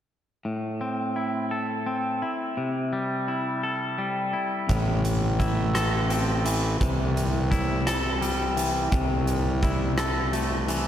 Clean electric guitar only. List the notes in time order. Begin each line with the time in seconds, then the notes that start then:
0.45 A2
0.81 C4
1.16 E4
1.51 A4
1.86 C4
2.22 E4
2.57 C3
2.93 G3
3.28 E4
3.63 A4
3.98 G3
4.33 E4
4.69 A2
5.39 E4
5.74 A4
6.10 C4
6.45 E3
6.81 C3
7.51 E4
7.87 A4
8.22 G3
8.57 E3
8.92 C3
9.63 E4
9.98 A4
10.33 A3
10.68 E3